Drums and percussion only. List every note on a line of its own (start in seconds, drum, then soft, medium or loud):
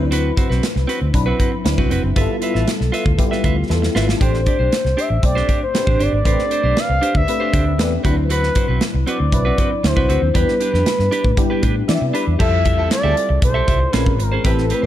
0.12 closed hi-hat medium
0.37 kick medium
0.37 closed hi-hat medium
0.51 snare soft
0.63 snare medium
0.63 closed hi-hat medium
0.76 snare soft
0.89 closed hi-hat medium
1.14 kick medium
1.14 closed hi-hat medium
1.40 kick medium
1.40 closed hi-hat medium
1.66 snare loud
1.66 closed hi-hat medium
1.78 kick medium
1.91 closed hi-hat medium
2.16 kick medium
2.16 closed hi-hat medium
2.42 closed hi-hat medium
2.55 snare soft
2.67 snare medium
2.67 closed hi-hat medium
2.81 snare soft
2.94 closed hi-hat medium
3.06 kick medium
3.19 kick medium
3.19 closed hi-hat medium
3.32 snare soft
3.44 kick medium
3.44 closed hi-hat medium
3.70 snare soft
3.83 snare medium
3.96 snare medium
4.09 snare medium
4.21 kick medium
4.21 closed hi-hat medium
4.34 snare soft
4.46 kick medium
4.46 closed hi-hat medium
4.72 snare medium
4.72 closed hi-hat medium
4.86 snare soft
4.99 closed hi-hat medium
5.23 kick medium
5.23 closed hi-hat medium
5.37 snare soft
5.49 kick medium
5.49 closed hi-hat medium
5.75 snare loud
5.75 closed hi-hat medium
5.87 kick medium
6.00 closed hi-hat medium
6.25 kick medium
6.25 closed hi-hat medium
6.39 snare soft
6.51 closed hi-hat medium
6.77 snare medium
6.77 closed hi-hat medium
7.03 closed hi-hat medium
7.15 kick medium
7.28 closed hi-hat medium
7.53 kick medium
7.53 closed hi-hat medium
7.79 snare loud
7.79 closed hi-hat medium
8.05 kick medium
8.05 closed hi-hat medium
8.30 closed hi-hat medium
8.43 snare soft
8.55 kick medium
8.55 closed hi-hat medium
8.81 snare medium
8.81 closed hi-hat medium
9.07 closed hi-hat medium
9.32 kick medium
9.32 closed hi-hat medium
9.58 kick medium
9.58 closed hi-hat medium
9.84 snare loud
9.84 closed hi-hat medium
9.97 kick loud
10.10 closed hi-hat medium
10.35 kick medium
10.35 closed hi-hat medium
10.48 snare soft
10.61 closed hi-hat medium
10.74 snare soft
10.86 snare medium
10.86 closed hi-hat medium
10.99 snare soft
11.12 closed hi-hat medium
11.24 kick medium
11.37 kick medium
11.37 closed hi-hat medium
11.63 kick medium
11.63 closed hi-hat medium
11.89 snare loud
11.89 closed hi-hat medium
12.15 closed hi-hat medium
12.40 kick loud
12.40 crash medium
12.65 kick medium
12.65 closed hi-hat medium
12.91 snare medium
12.91 clap medium
12.91 closed hi-hat medium
13.17 closed hi-hat medium
13.42 kick loud
13.42 closed hi-hat medium
13.68 kick medium
13.68 closed hi-hat medium
13.94 snare loud
13.94 clap medium
13.94 closed hi-hat medium
14.06 kick loud
14.20 closed hi-hat medium
14.45 kick loud
14.45 closed hi-hat loud
14.58 snare soft
14.70 closed hi-hat medium